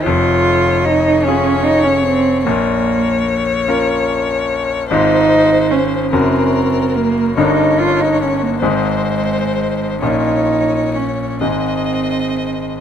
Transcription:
X:1
M:6/8
L:1/16
Q:3/8=49
K:Db
V:1 name="Violin"
d6 d6 | d12 | c6 B6 | d6 c6 |
d6 e6 |]
V:2 name="Cello"
F4 E2 D2 E D C2 | B,6 z6 | E4 D2 C4 B,2 | E2 F E D B, A,6 |
E4 D2 C6 |]
V:3 name="Grand piano"
[F,,,F,,]6 [DFA]6 | [B,,,B,,]6 [DFB]6 | [A,,,A,,CFc]6 [G,,,G,,DGB]6 | [=G,,,=G,,DEB]6 [A,,,A,,CEA]6 |
[B,,,B,,DF]6 [A,,,A,,A,EA]6 |]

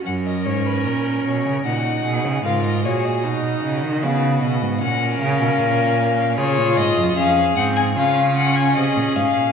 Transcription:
X:1
M:4/4
L:1/16
Q:1/4=76
K:F#
V:1 name="Violin"
f d c B A2 c2 f4 e d c d- | d4 e2 d2 f2 e6 | c2 d2 e2 f g e2 f g d2 e2 |]
V:2 name="Violin"
A8 F2 G2 A2 G2 | F8 A8 | G4 G4 E4 G4 |]
V:3 name="Viola"
C8 D4 E2 F2 | D4 B,4 C8 | E4 C2 ^B,2 C8 |]
V:4 name="Cello" clef=bass
F,,2 G,,2 A,,2 B,, C, A,,2 B,, C, G,,2 A,,2 | B,,2 C, D, C,2 B,, G,, A,,2 C, B,, A,,4 | C, A,, G,, F,, E,,2 G,,2 C,4 ^B,, A,, G,, A,, |]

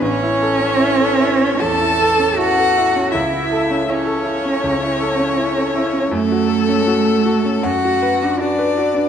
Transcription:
X:1
M:4/4
L:1/16
Q:1/4=80
K:A
V:1 name="Violin"
c8 a4 f4 | e4 c12 | [K:F#m] A8 f4 d4 |]
V:2 name="Grand piano"
A,,, E A C E A E C E,, E A C E A E C | C,, E A C E A E C C,, E A C E A E C | [K:F#m] F,, F A C F A F C F,, F B D F B F D |]
V:3 name="Cello"
C8 A4 F4 | E4 C12 | [K:F#m] A,8 F4 D4 |]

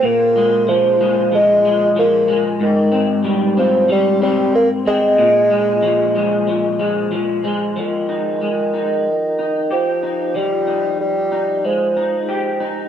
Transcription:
X:1
M:4/4
L:1/16
Q:"Swing 16ths" 1/4=93
K:Fm
V:1 name="Clean electric guitar" clef=bass
B,,2 A,2 F,2 A,2 F,2 A,2 F,2 A,2 | A,,2 C2 G,2 C2 G,2 C4 C2 | B,,2 A,2 F,2 A,2 F,2 A,2 F,2 A,2 | F,2 E2 A,2 E4 E2 G2 E2 |
F,2 E4 E2 A,2 E2 G2 E2 |]
V:2 name="Bassoon" clef=bass
B,4 F,4 A,4 B,3 z | E,4 z2 F,2 G,2 G,2 B,2 A,2- | A,12 z4 | E,12 F,4 |
G,4 G,4 F,6 z2 |]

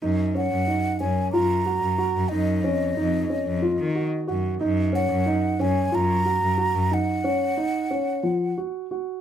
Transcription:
X:1
M:7/8
L:1/16
Q:1/4=92
K:Gb
V:1 name="Flute"
z2 g4 a2 b6 | e12 z2 | z2 g4 a2 b6 | g8- g2 z4 |]
V:2 name="Grand piano"
E2 D2 E2 D2 F2 G2 G2 | E2 D2 E2 D2 F2 G2 G2 | E2 D2 E2 D2 F2 G2 G2 | E2 D2 E2 D2 F,2 G2 G2 |]
V:3 name="Cello" clef=bass
G,,3 G,,2 z G,,2 G,,3 G,, z G,, | G,,2 F,,2 F,,2 z F,,2 E,2 z G,,2 | G,,3 G,,2 z G,,2 G,,3 G,, z G,, | z12 z2 |]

